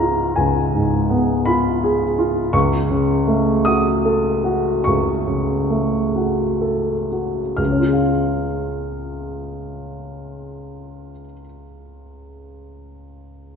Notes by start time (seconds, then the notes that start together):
Already playing: C#2 G#2 B3 G#4 A#5 C#6
0.00 F4
0.36 C#2 G#5
0.74 G#2
1.10 B3
1.46 F4 B5
1.84 G#4
2.19 F4
2.53 C#2 C#6
2.91 C#3
3.27 A3
3.65 F#4 D#6
4.05 A4
4.44 F#4
4.84 C#2 C#6
5.27 C#3
5.70 A3
6.16 F#4
6.61 A4
7.11 F#4
7.57 C#2 F6
7.66 C#3
7.72 C#4
7.80 F4
7.86 G#4
7.93 F5